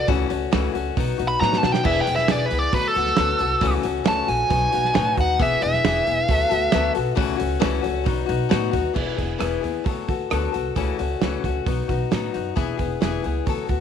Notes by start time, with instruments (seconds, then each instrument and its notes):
0.07 upright bass C#2, steel-string acoustic guitar C#3 E3 A3 C#4 F#4, kick, open hi-hat
0.29 upright bass C#2, steel-string acoustic guitar A3 C#4 F#4, open hi-hat
0.51 upright bass C#2, steel-string acoustic guitar C#3 E3 A3 C#4 F#4, snare, open hi-hat
0.73 upright bass C#2, steel-string acoustic guitar A3 C#4 F#4, open hi-hat
0.96 upright bass B1, steel-string acoustic guitar F#3 B3 D#4 F#4, kick, open hi-hat
1.18 upright bass B1, steel-string acoustic guitar B3 D#4 F#4, open hi-hat
1.28 lead electric guitar B5
1.40 upright bass A2, steel-string acoustic guitar B2 F#3 B3 D#4 F#4, lead electric guitar A#5, snare
1.53 snare
1.58 lead electric guitar A5
1.62 upright bass B2, steel-string acoustic guitar B3 D#4 F#4, snare
1.72 lead electric guitar G5, snare
1.83 upright bass E1, steel-string acoustic guitar E3 B3 E4 G#4, lead electric guitar E5, kick, crash
2.01 lead electric guitar G5
2.06 upright bass E1, steel-string acoustic guitar B3 E4 G#4, open hi-hat
2.16 lead electric guitar E5, snare
2.28 upright bass E1, steel-string acoustic guitar E3 B3 E4 G#4, lead electric guitar D5, snare, open hi-hat
2.46 steel-string acoustic guitar G#4, lead electric guitar B4
2.51 upright bass C#2, steel-string acoustic guitar B3 E4, open hi-hat
2.59 lead electric guitar D5
2.72 upright bass D2, steel-string acoustic guitar F#3 B3 F#4 A4, lead electric guitar B4, kick, open hi-hat
2.88 lead electric guitar A4
2.95 upright bass D2, steel-string acoustic guitar B3 F#4 A4, open hi-hat
3.07 snare
3.17 upright bass D2, steel-string acoustic guitar D3 F#3 B3 F#4 A4, snare, open hi-hat
3.39 upright bass C2, steel-string acoustic guitar B3 F#4 A4, open hi-hat
3.61 upright bass C#2, steel-string acoustic guitar C#3 E3 A3 C#4 F#4, kick, open hi-hat
3.83 upright bass C#2, steel-string acoustic guitar A3 C#4 F#4, open hi-hat
4.04 upright bass C#2, steel-string acoustic guitar C#3 E3 A3 C#4 F#4, lead electric guitar A5, snare, open hi-hat
4.27 upright bass A#1, steel-string acoustic guitar A3 C#4 F#4, lead electric guitar G#5, open hi-hat
4.48 upright bass B1, steel-string acoustic guitar F#3 B3 D#4 F#4, kick, open hi-hat
4.71 upright bass B1, steel-string acoustic guitar B3 D#4 F#4, open hi-hat
4.85 snare
4.94 upright bass A2, steel-string acoustic guitar B2 F#3 B3 D#4 F#4, snare, open hi-hat
5.17 upright bass D#2, steel-string acoustic guitar B3 D#4 F#4, lead electric guitar F#5, kick, open hi-hat
5.39 upright bass E1, steel-string acoustic guitar E3 B3 E4 G#4, lead electric guitar E5, kick, open hi-hat
5.61 upright bass E1, steel-string acoustic guitar B3 E4 G#4, lead electric guitar E5, open hi-hat
5.73 snare
5.84 upright bass E1, steel-string acoustic guitar E3 B3 E4 G#4, snare, open hi-hat
6.05 upright bass E1, steel-string acoustic guitar B3 E4 G#4, open hi-hat
6.28 upright bass D2, steel-string acoustic guitar F#3 B3 F#4 A4, kick, open hi-hat
6.49 upright bass D2, steel-string acoustic guitar B3 F#4 A4, open hi-hat
6.72 upright bass D2, steel-string acoustic guitar D3 F#3 B3 F#4 A4, snare, open hi-hat
6.95 upright bass B1, steel-string acoustic guitar B3 F#4 A4, open hi-hat
7.15 upright bass C#2, steel-string acoustic guitar C#3 E3 A3 C#4 F#4, kick, open hi-hat
7.36 steel-string acoustic guitar A3 C#4 F#4, open hi-hat
7.41 upright bass C#2
7.60 steel-string acoustic guitar C#3 E3 A3 C#4 F#4, snare, open hi-hat
7.64 upright bass C#2
7.81 steel-string acoustic guitar A3 C#4 F#4, open hi-hat
7.86 upright bass C#2
8.04 upright bass B1, steel-string acoustic guitar F#3 B3 D#4 F#4, kick, open hi-hat
8.26 upright bass B1, steel-string acoustic guitar B3 D#4 F#4, open hi-hat
8.49 upright bass A2, steel-string acoustic guitar B2 F#3 B3 D#4 F#4, snare, open hi-hat
8.71 upright bass D#2, steel-string acoustic guitar B3 D#4 F#4, kick, open hi-hat
8.93 upright bass E1, steel-string acoustic guitar E3 B3 E4 G#4, kick, crash
9.16 upright bass E1, steel-string acoustic guitar B3 E4 G#4, kick, open hi-hat
9.38 upright bass E1, steel-string acoustic guitar E3 B3 E4 G#4, cross-stick, open hi-hat
9.61 upright bass D#2, steel-string acoustic guitar B3 E4 G#4, open hi-hat
9.84 upright bass D2, steel-string acoustic guitar F#3 B3 F#4 A4, kick, open hi-hat
10.08 upright bass D2, steel-string acoustic guitar B3 F#4 A4, kick, open hi-hat
10.30 upright bass D2, steel-string acoustic guitar D3 F#3 B3 F#4 A4, cross-stick, open hi-hat
10.52 upright bass C2, steel-string acoustic guitar B3 F#4 A4, open hi-hat
10.76 upright bass C#2, steel-string acoustic guitar C#3 E3 A3 C#4 F#4, kick, open hi-hat
10.98 upright bass C#2, steel-string acoustic guitar A3 C#4 F#4, open hi-hat
11.21 upright bass C#2, steel-string acoustic guitar C#3 E3 A3 C#4 F#4, snare, open hi-hat
11.44 upright bass C#2, steel-string acoustic guitar A3 C#4 F#4, kick, open hi-hat
11.66 upright bass B1, steel-string acoustic guitar F#3 B3 D#4 F#4, kick, open hi-hat
11.88 upright bass B1, steel-string acoustic guitar B3 D#4 F#4, kick, open hi-hat
12.11 upright bass A2, steel-string acoustic guitar B2 F#3 B3 D#4 F#4, snare, open hi-hat
12.33 upright bass F#2, steel-string acoustic guitar B3 D#4 F#4, open hi-hat
12.56 upright bass E1, steel-string acoustic guitar E3 B3 E4 G#4, kick, open hi-hat
12.77 upright bass E1, steel-string acoustic guitar B3 E4 G#4, kick, open hi-hat
13.01 upright bass E1, steel-string acoustic guitar E3 B3 E4 G#4, snare, open hi-hat
13.24 upright bass C#2, steel-string acoustic guitar B3 E4 G#4, open hi-hat
13.46 upright bass D2, steel-string acoustic guitar F#3 B3 F#4 A4, kick, open hi-hat
13.68 upright bass D2, steel-string acoustic guitar B3 F#4 A4, kick, open hi-hat